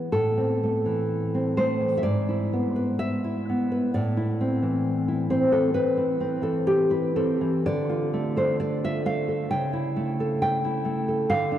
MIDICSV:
0, 0, Header, 1, 2, 480
1, 0, Start_track
1, 0, Key_signature, 0, "minor"
1, 0, Tempo, 961538
1, 63, Time_signature, 4, 2, 24, 8
1, 1500, Tempo, 930233
1, 2460, Tempo, 900901
1, 3420, Tempo, 967742
1, 4380, Tempo, 896861
1, 5976, End_track
2, 0, Start_track
2, 0, Title_t, "Nylon-string guitar"
2, 0, Program_c, 0, 24
2, 0, Note_on_c, 0, 59, 32
2, 61, Note_on_c, 0, 69, 76
2, 65, Note_off_c, 0, 59, 0
2, 66, Note_on_c, 0, 45, 56
2, 187, Note_on_c, 0, 60, 40
2, 317, Note_on_c, 0, 57, 44
2, 427, Note_on_c, 0, 52, 38
2, 665, Note_off_c, 0, 60, 0
2, 671, Note_on_c, 0, 60, 44
2, 763, Note_off_c, 0, 69, 0
2, 781, Note_off_c, 0, 57, 0
2, 785, Note_off_c, 0, 52, 0
2, 785, Note_on_c, 0, 72, 79
2, 787, Note_on_c, 0, 57, 46
2, 902, Note_on_c, 0, 52, 39
2, 977, Note_off_c, 0, 72, 0
2, 986, Note_on_c, 0, 76, 55
2, 1001, Note_off_c, 0, 45, 0
2, 1013, Note_on_c, 0, 74, 74
2, 1016, Note_off_c, 0, 52, 0
2, 1018, Note_on_c, 0, 44, 51
2, 1021, Note_off_c, 0, 76, 0
2, 1022, Note_off_c, 0, 57, 0
2, 1022, Note_off_c, 0, 60, 0
2, 1141, Note_on_c, 0, 64, 42
2, 1265, Note_on_c, 0, 59, 46
2, 1377, Note_on_c, 0, 71, 43
2, 1478, Note_off_c, 0, 74, 0
2, 1491, Note_off_c, 0, 64, 0
2, 1493, Note_on_c, 0, 76, 81
2, 1623, Note_on_c, 0, 64, 38
2, 1746, Note_off_c, 0, 59, 0
2, 1753, Note_on_c, 0, 59, 40
2, 1861, Note_off_c, 0, 71, 0
2, 1867, Note_on_c, 0, 71, 47
2, 1963, Note_off_c, 0, 76, 0
2, 1965, Note_off_c, 0, 44, 0
2, 1981, Note_off_c, 0, 71, 0
2, 1983, Note_on_c, 0, 74, 78
2, 1985, Note_off_c, 0, 59, 0
2, 1986, Note_off_c, 0, 64, 0
2, 1987, Note_on_c, 0, 45, 58
2, 2102, Note_on_c, 0, 64, 43
2, 2224, Note_on_c, 0, 60, 46
2, 2335, Note_on_c, 0, 52, 43
2, 2569, Note_off_c, 0, 64, 0
2, 2575, Note_on_c, 0, 64, 40
2, 2676, Note_off_c, 0, 74, 0
2, 2686, Note_off_c, 0, 60, 0
2, 2692, Note_on_c, 0, 60, 47
2, 2693, Note_on_c, 0, 72, 75
2, 2801, Note_off_c, 0, 52, 0
2, 2807, Note_on_c, 0, 52, 43
2, 2808, Note_off_c, 0, 72, 0
2, 2810, Note_on_c, 0, 69, 66
2, 2914, Note_off_c, 0, 45, 0
2, 2921, Note_off_c, 0, 60, 0
2, 2925, Note_off_c, 0, 69, 0
2, 2926, Note_on_c, 0, 60, 37
2, 2927, Note_on_c, 0, 71, 70
2, 3044, Note_off_c, 0, 64, 0
2, 3050, Note_on_c, 0, 64, 42
2, 3167, Note_off_c, 0, 60, 0
2, 3174, Note_on_c, 0, 60, 44
2, 3278, Note_off_c, 0, 71, 0
2, 3280, Note_off_c, 0, 52, 0
2, 3287, Note_on_c, 0, 52, 43
2, 3293, Note_on_c, 0, 69, 64
2, 3418, Note_off_c, 0, 69, 0
2, 3421, Note_on_c, 0, 67, 76
2, 3528, Note_off_c, 0, 64, 0
2, 3534, Note_on_c, 0, 64, 41
2, 3539, Note_off_c, 0, 67, 0
2, 3539, Note_on_c, 0, 71, 60
2, 3659, Note_off_c, 0, 60, 0
2, 3663, Note_off_c, 0, 71, 0
2, 3664, Note_on_c, 0, 60, 42
2, 3665, Note_on_c, 0, 69, 66
2, 3783, Note_off_c, 0, 52, 0
2, 3789, Note_on_c, 0, 52, 42
2, 3903, Note_off_c, 0, 69, 0
2, 3910, Note_off_c, 0, 64, 0
2, 3911, Note_off_c, 0, 60, 0
2, 3912, Note_off_c, 0, 52, 0
2, 3912, Note_on_c, 0, 74, 88
2, 3913, Note_on_c, 0, 50, 56
2, 4029, Note_on_c, 0, 65, 43
2, 4148, Note_on_c, 0, 57, 45
2, 4251, Note_off_c, 0, 74, 0
2, 4261, Note_on_c, 0, 69, 44
2, 4266, Note_on_c, 0, 72, 70
2, 4376, Note_off_c, 0, 72, 0
2, 4378, Note_on_c, 0, 74, 77
2, 4502, Note_off_c, 0, 65, 0
2, 4502, Note_off_c, 0, 74, 0
2, 4508, Note_on_c, 0, 65, 47
2, 4510, Note_on_c, 0, 76, 77
2, 4616, Note_off_c, 0, 57, 0
2, 4622, Note_on_c, 0, 57, 49
2, 4623, Note_off_c, 0, 76, 0
2, 4625, Note_on_c, 0, 77, 82
2, 4738, Note_off_c, 0, 69, 0
2, 4744, Note_on_c, 0, 69, 44
2, 4846, Note_off_c, 0, 50, 0
2, 4856, Note_off_c, 0, 77, 0
2, 4864, Note_on_c, 0, 79, 83
2, 4865, Note_off_c, 0, 57, 0
2, 4866, Note_off_c, 0, 69, 0
2, 4867, Note_on_c, 0, 49, 56
2, 4869, Note_off_c, 0, 65, 0
2, 4985, Note_on_c, 0, 64, 46
2, 5109, Note_on_c, 0, 57, 49
2, 5236, Note_on_c, 0, 69, 49
2, 5327, Note_off_c, 0, 79, 0
2, 5352, Note_on_c, 0, 79, 87
2, 5467, Note_off_c, 0, 64, 0
2, 5474, Note_on_c, 0, 64, 45
2, 5576, Note_off_c, 0, 57, 0
2, 5582, Note_on_c, 0, 57, 43
2, 5700, Note_off_c, 0, 69, 0
2, 5707, Note_on_c, 0, 69, 48
2, 5802, Note_off_c, 0, 49, 0
2, 5806, Note_off_c, 0, 79, 0
2, 5822, Note_off_c, 0, 57, 0
2, 5822, Note_on_c, 0, 77, 97
2, 5824, Note_off_c, 0, 69, 0
2, 5825, Note_off_c, 0, 64, 0
2, 5827, Note_on_c, 0, 50, 68
2, 5939, Note_on_c, 0, 62, 52
2, 5976, Note_off_c, 0, 50, 0
2, 5976, Note_off_c, 0, 62, 0
2, 5976, Note_off_c, 0, 77, 0
2, 5976, End_track
0, 0, End_of_file